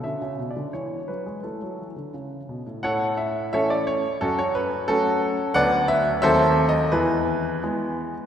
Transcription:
<<
  \new Staff \with { instrumentName = "Grand piano" } { \time 2/4 \key a \major \tempo 4 = 87 << { \tuplet 3/2 { e''4 d''8 } cis''8 b'8 | a'4 r4 | fis''8 e''8 e''16 d''16 cis''8 | a'16 cis''16 b'8 a'4 |
fis''8 e''8 \tuplet 3/2 { e''4 dis''8 } | b'4 r4 | } \\ { fis'4 r4 | e'2 | <a' cis''>8 r8 <a' cis''>16 r8. | <cis' fis'>16 r8. <cis' fis'>4 |
<b' d''>8 r8 <a' bis'>8 r8 | <e' gis'>4 r4 | } >> }
  \new Staff \with { instrumentName = "Grand piano" } { \clef bass \time 2/4 \key a \major d16 cis16 b,16 d16 e8 fis16 gis16 | a16 fis16 e16 d16 cis8 b,16 a,16 | a,4 <e a cis'>4 | fis,4 <fis a>4 |
<d, fis b d'>4 <dis, fis a bis>4 | e,4 <e gis b>4 | }
>>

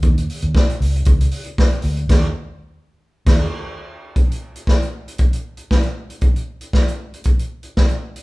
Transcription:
<<
  \new Staff \with { instrumentName = "Fingered electric bass" } { \clef bass \time 4/4 \key des \major \tempo 4 = 116 ees,8 r16 ees,16 r8 des,8 des,8 r4 d,8 | ees,8 r4. r16 ees,8 r4 r16 | r1 | r1 | }
  \new DrumStaff \with { instrumentName = "Drums" } \drummode { \time 4/4 <hh bd>16 hh16 hho16 hh16 <bd sn>16 hh16 hho16 hh16 <hh bd>16 hh16 hho16 hh16 <bd sn>16 hh16 hho16 hh16 | <cymc bd sn>4 r4 r16 <cymc bd sn>8. r4 | <hh bd>16 hh8 hh16 <bd sn>16 hh8 hh16 <hh bd>16 hh8 hh16 <bd sn>16 hh8 hh16 | <hh bd>16 hh8 hh16 <bd sn>16 hh8 hh16 <hh bd>16 hh8 hh16 <bd sn>16 hh8 hh16 | }
>>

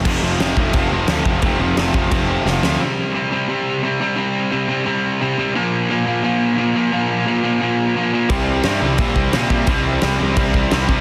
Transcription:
<<
  \new Staff \with { instrumentName = "Overdriven electric guitar" } { \clef bass \time 4/4 \key c \mixolydian \tempo 4 = 174 <f, c f a c'>2 <f, c f a c'>2 | <f, c f a c'>2 <f, c f a c'>2 | r1 | r1 |
r1 | r1 | <c g c' e'>4 <c g c' e'>8 <c g c' e'>8 <c g c' e'>4 <c g c' e'>8 <c g c' e'>8 | <c g c' e'>4 <c g c' e'>8 <c g c' e'>8 <c g c' e'>4 <c g c' e'>8 <c g c' e'>8 | }
  \new Staff \with { instrumentName = "Distorted electric guitar" } { \clef bass \time 4/4 \key c \mixolydian <f, c f>8 <f, c f>8 <f, c f>8 <f, c f>8 <f, c f>8 <f, c f>8 <f, c f>8 <f, c f>8 | <f, c f>8 <f, c f>8 <f, c f>8 <f, c f>8 <f, c f>8 <f, c f>8 <f, c f>8 <f, c f>8 | <c g c'>4 <c g c'>8 <c g c'>8 <c g c'>4 <c g c'>8 <c g c'>8 | <c g c'>4 <c g c'>8 <c g c'>8 <c g c'>4 <c g c'>8 <c g c'>8 |
<bes, f bes>4 <bes, f bes>8 <bes, f bes>8 <bes, f bes>4 <bes, f bes>8 <bes, f bes>8 | <bes, f bes>4 <bes, f bes>8 <bes, f bes>8 <bes, f bes>4 <bes, f bes>8 <bes, f bes>8 | <c g c'>4 <c g c'>8 <c g c'>8 <c g c'>4 <c g c'>8 <c g c'>8 | <c g c'>4 <c g c'>8 <c g c'>8 <c g c'>4 <c g c'>8 <c g c'>8 | }
  \new Staff \with { instrumentName = "Distorted electric guitar" } { \clef bass \time 4/4 \key c \mixolydian <f, c f>8 <f, c f>8 <f, c f>8 <f, c f>8 <f, c f>8 <f, c f>8 <f, c f>8 <f, c f>8 | <f, c f>8 <f, c f>8 <f, c f>8 <f, c f>8 <f, c f>8 <f, c f>8 <f, c f>8 <f, c f>8 | r1 | r1 |
r1 | r1 | <c g c'>4 <c g c'>8 <c g c'>8 <c g c'>4 <c g c'>8 <c g c'>8 | <c g c'>4 <c g c'>8 <c g c'>8 <c g c'>4 <c g c'>8 <c g c'>8 | }
  \new Staff \with { instrumentName = "Picked electric bass" } { \clef bass \time 4/4 \key c \mixolydian f,,8 f,,8 f,,8 f,,8 f,,8 f,,8 d,8 f,,8 | f,,8 f,,8 f,,8 f,,8 f,,4 f,,8 d,8 | r1 | r1 |
r1 | r1 | c,4 g,8 c,8 bes,8 c,8 bes,8 bes,8 | c,4 c,8 c,8 c,4 c,8 c,8 | }
  \new DrumStaff \with { instrumentName = "Drums" } \drummode { \time 4/4 <cymc bd>4 <cymc sn>8 bd8 <cymc bd>4 <cymc sn>8 bd8 | <cymc bd>4 <cymc sn>8 bd8 <cymc bd>4 sn8 sn8 | r4 r4 r4 r4 | r4 r4 r4 r4 |
r4 r4 r4 r4 | r4 r4 r4 r4 | <cymc bd>4 <cymc sn>4 <cymc bd>8 bd8 <cymc sn>8 bd8 | <cymc bd>4 <cymc sn>4 <cymc bd>8 bd8 <cymc sn>8 bd8 | }
>>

